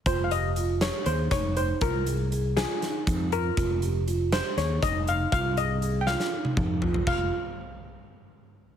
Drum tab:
CC |--------------|--------------|--------------|--------------|
HH |x-x-x-x-x-x-x-|x-x-x-x-x-x-x-|x-x-x-x-x-x-x-|x-x-x---------|
SD |------o---o---|------o-o-----|------o-o-o---|------oo------|
T1 |--------------|--------------|--------------|---------o----|
T2 |--------------|--------------|--------------|----------o---|
FT |--------------|--------------|--------------|------------oo|
BD |o---------o---|o---------o---|o---------o---|o---------o---|

CC |x-------------|
HH |--------------|
SD |--------------|
T1 |--------------|
T2 |--------------|
FT |--------------|
BD |o-------------|